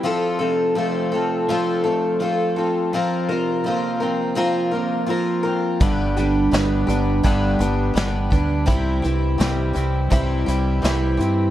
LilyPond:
<<
  \new Staff \with { instrumentName = "Twelve-string acoustic guitar" } { \time 4/4 \key g \mixolydian \tempo 4 = 84 <f c' f' a'>8 <c' f' a'>8 <f c' f' a'>8 <c' f' a'>8 <f c' f' a'>8 <c' f' a'>8 <f c' f' a'>8 <c' f' a'>8 | <f c' f' bes'>8 <c' f' bes'>8 <f c' f' bes'>8 <c' f' bes'>8 <f c' f' bes'>8 <c' f' bes'>8 <f c' f' bes'>8 <c' f' bes'>8 | <g, d g b d' g'>8 <g b d' g'>8 <g b d' g'>8 <g b d' g'>8 <g, d g b d' g'>8 <g b d' g'>8 <g b d' g'>8 <g b d' g'>8 | <c g c' e' g'>8 <c' e' g'>8 <g c' e' g'>8 <c' e' g'>8 <c g c' e' g'>8 <c' e' g'>8 <g c' e' g'>8 <c' e' g'>8 | }
  \new Staff \with { instrumentName = "Clean electric guitar" } { \clef bass \time 4/4 \key g \mixolydian f,8 c8 a8 c'8 f8 a8 f8 c'8 | f,8 c8 bes8 c'8 f8 bes8 f8 c'8 | g,8 d8 b8 d'8 g8 b8 g8 d'8 | c8 e8 g8 c'8 e8 g8 e8 c'8 | }
  \new Staff \with { instrumentName = "Fingered electric bass" } { \clef bass \time 4/4 \key g \mixolydian r1 | r1 | g,,4 g,,8 g,,8 g,,8 g,,8 g,,8 d,8 | c,8 c,8 c,8 c,8 c,8 c,8 c,8 g,8 | }
  \new DrumStaff \with { instrumentName = "Drums" } \drummode { \time 4/4 r4 r4 r4 r4 | r4 r4 r4 r4 | <hh bd>8 hh8 <hh sn>8 hh8 <hh bd>8 hh8 <hh sn>8 <hh bd>8 | <hh bd>8 hh8 <hh sn>8 hh8 <hh bd>8 hh8 <hh sn>8 hh8 | }
>>